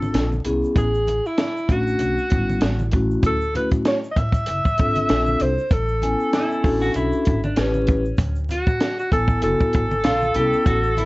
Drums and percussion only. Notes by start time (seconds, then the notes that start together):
0.02 high conga, shaker
0.14 snare, closed hi-hat, shaker
0.32 high conga, shaker
0.45 closed hi-hat, low conga, shaker
0.64 shaker
0.76 kick, closed hi-hat, shaker
0.94 shaker
1.07 closed hi-hat, high conga, low conga, shaker
1.26 shaker
1.38 snare, closed hi-hat, shaker
1.57 shaker
1.69 kick, closed hi-hat, low conga, shaker
1.87 shaker
1.99 closed hi-hat, shaker
2.18 shaker
2.30 kick, closed hi-hat, shaker
2.50 high conga, shaker
2.61 snare, closed hi-hat, shaker
2.79 high conga, shaker
2.92 kick, closed hi-hat, low conga, shaker
3.11 shaker
3.23 kick, closed hi-hat, shaker
3.41 shaker
3.55 closed hi-hat, high conga, low conga, shaker
3.71 kick, closed hi-hat, shaker
3.85 snare, closed hi-hat, shaker
4.04 shaker
4.16 kick, closed hi-hat, low conga, shaker
4.32 kick, closed hi-hat, shaker
4.46 closed hi-hat, shaker
4.65 kick, shaker
4.78 kick, closed hi-hat, shaker
4.95 closed hi-hat, high conga, shaker
5.09 snare, closed hi-hat, shaker
5.26 high conga, shaker
5.39 closed hi-hat, low conga, shaker
5.58 shaker
5.71 kick, closed hi-hat, shaker
5.89 shaker
6.02 closed hi-hat, high conga, low conga, shaker
6.20 shaker
6.33 snare, closed hi-hat, shaker
6.52 shaker
6.64 kick, open hi-hat, low conga, shaker
6.82 shaker
6.94 closed hi-hat, shaker
7.12 shaker
7.25 kick, closed hi-hat, shaker
7.44 high conga, shaker
7.56 snare, closed hi-hat, shaker
7.74 high conga, shaker
7.87 kick, closed hi-hat, low conga, shaker
8.05 shaker
8.17 kick, closed hi-hat, shaker
8.36 shaker
8.49 closed hi-hat, high conga, low conga, shaker
8.67 kick, shaker
8.80 snare, closed hi-hat, shaker
8.99 shaker
9.12 kick, closed hi-hat, low conga, shaker
9.28 kick, shaker
9.42 closed hi-hat, shaker
9.60 kick, shaker
9.73 kick, closed hi-hat, shaker
9.91 high conga, shaker
10.04 snare, closed hi-hat, shaker
10.22 high conga, shaker
10.34 closed hi-hat, low conga, shaker
10.53 shaker
10.66 kick, closed hi-hat, shaker
10.84 shaker
10.97 closed hi-hat, high conga, low conga, shaker